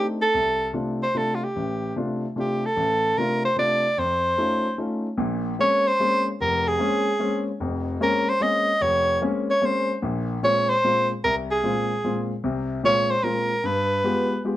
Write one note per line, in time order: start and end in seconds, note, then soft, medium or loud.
0.00 0.22 A3 soft
0.00 0.22 C4 soft
0.00 0.22 D4 soft
0.00 0.22 D#4 soft
0.22 0.71 A4 medium
0.34 0.69 C2 medium
0.73 1.02 C3 soft
0.73 1.02 A3 soft
0.73 1.02 D4 soft
0.73 1.02 F4 medium
1.03 1.19 C5 medium
1.15 1.42 C3 soft
1.15 1.42 A3 soft
1.15 1.43 D4 soft
1.15 1.43 F4 soft
1.15 1.37 A4 medium
1.35 1.46 F4 soft
1.44 1.97 G4 medium
1.56 1.90 A1 medium
1.96 2.24 C3 soft
1.96 2.24 A3 soft
1.96 2.24 D4 soft
1.96 2.24 F4 medium
2.36 2.64 C3 soft
2.36 2.64 A3 soft
2.36 2.64 D4 soft
2.36 2.64 F4 soft
2.36 2.67 G4 medium
2.65 3.19 A4 medium
2.76 3.11 A1 medium
3.18 3.45 C3 medium
3.18 3.45 A3 soft
3.18 3.45 D4 soft
3.18 3.46 F4 medium
3.18 3.44 A#4 medium
3.45 3.57 C5 medium
3.56 3.84 C3 soft
3.56 3.84 A3 soft
3.56 3.85 D4 soft
3.56 3.85 F4 soft
3.56 4.00 D5 medium
3.98 4.32 F2 medium
3.98 4.78 C5 medium
4.38 4.65 A3 soft
4.38 4.66 C#4 soft
4.38 4.66 D#4 soft
4.38 4.66 F4 medium
4.78 5.06 A3 soft
4.78 5.06 C#4 soft
4.78 5.06 D#4 soft
4.78 5.06 F4 soft
5.18 5.53 A#1 medium
5.18 5.53 A#2 medium
5.59 5.86 G#3 medium
5.59 5.87 A#3 soft
5.59 5.87 C4 soft
5.59 5.87 C#4 medium
5.59 5.89 C#5 loud
5.88 6.26 C5 medium
6.00 6.27 G#3 medium
6.00 6.27 A#3 soft
6.00 6.27 C4 soft
6.00 6.27 C#4 medium
6.41 6.75 F1 medium
6.41 6.69 A#4 medium
6.68 7.47 G#4 medium
6.79 7.07 G#3 medium
6.79 7.07 A#3 medium
6.79 7.07 C4 soft
6.79 7.08 C#4 medium
7.19 7.47 G#3 soft
7.19 7.47 A#3 soft
7.19 7.47 C4 soft
7.19 7.48 C#4 medium
7.60 7.95 F1 medium
7.60 7.95 F2 medium
8.00 8.28 G#3 medium
8.00 8.28 A#3 medium
8.00 8.28 C4 medium
8.00 8.28 C#4 medium
8.00 8.30 A#4 medium
8.29 8.44 C5 medium
8.40 8.68 G#3 soft
8.40 8.69 A#3 soft
8.40 8.68 C4 soft
8.40 8.68 C#4 medium
8.40 8.83 D#5 medium
8.81 9.16 F1 medium
8.81 9.21 C#5 medium
9.22 9.49 G#3 medium
9.22 9.49 A#3 medium
9.22 9.49 C4 soft
9.22 9.49 C#4 medium
9.50 9.67 C#5 medium
9.62 9.89 G#3 soft
9.62 9.89 A#3 soft
9.62 9.89 C4 soft
9.62 9.90 C#4 medium
9.62 9.97 C5 medium
10.02 10.37 A#1 medium
10.02 10.37 A#2 medium
10.43 10.70 A#2 medium
10.43 10.70 G#3 medium
10.43 10.70 C4 soft
10.43 10.70 F4 medium
10.43 10.71 C#5 loud
10.69 11.09 C5 medium
10.84 11.11 A#2 soft
10.84 11.11 G#3 soft
10.84 11.11 C4 soft
10.84 11.11 F4 soft
11.24 11.58 C2 medium
11.24 11.35 A#4 medium
11.51 12.26 G#4 medium
11.63 11.91 A#2 medium
11.63 11.91 G#3 soft
11.63 11.91 C4 medium
11.63 11.91 F4 medium
12.04 12.31 A#2 medium
12.04 12.31 G#3 soft
12.04 12.31 C4 soft
12.04 12.31 F4 medium
12.44 12.78 C2 medium
12.44 12.78 C3 medium
12.83 13.11 A#2 medium
12.83 13.11 G#3 medium
12.83 13.12 C4 soft
12.83 13.12 F4 medium
12.83 13.12 C#5 loud
13.11 13.25 C5 loud
13.23 13.51 A#2 soft
13.23 13.51 G#3 soft
13.23 13.52 C4 soft
13.23 13.51 F4 medium
13.23 13.67 A#4 medium
13.64 13.98 G2 medium
13.64 14.45 B4 medium
14.04 14.32 G#3 medium
14.04 14.32 B3 medium
14.04 14.32 F4 soft
14.04 14.32 G4 medium
14.45 14.57 G#3 medium
14.45 14.57 B3 soft
14.45 14.57 F4 soft
14.45 14.57 G4 medium